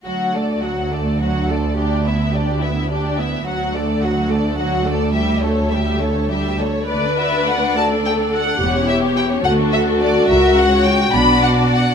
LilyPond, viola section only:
\new Staff \with { instrumentName = "Viola section" } { \time 6/8 \key d \major \tempo 4. = 71 fis8 a8 fis8 a8 fis8 a8 | d'8 b8 d'8 b8 d'8 b8 | fis8 a8 fis8 a8 fis8 a8 | g8 a8 g8 a8 g8 a8 |
b'4. a'4. | g'4. fis'4.~ | fis'4. d'4. | }